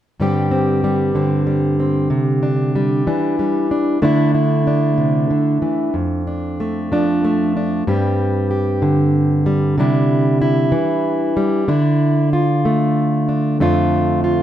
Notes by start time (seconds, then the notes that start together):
0.20 G2 D3 G3 C4 G4
0.51 C4
0.84 G3
1.15 D3 C4
1.47 G3
1.80 C4
2.10 C3
2.43 D4
2.76 G3
3.07 E3 D4
3.39 G3
3.71 D4
4.02 D3 A3 D4 E4
4.35 E4
4.67 D4
4.98 C3
5.30 D3
5.62 E3
5.94 F2
6.27 D4
6.60 A3
6.92 F3 D4
7.25 A3
7.57 D4
7.87 G2 G3 C4 G4
8.51 G4
8.82 D3
9.46 G3
9.78 C3 G3 D4 E4
10.41 E4
10.72 E3
11.37 G3
11.68 D3 D4 E4
12.33 F4
12.65 A3
13.29 D4
13.60 F2 A3 D4 F4
14.24 F4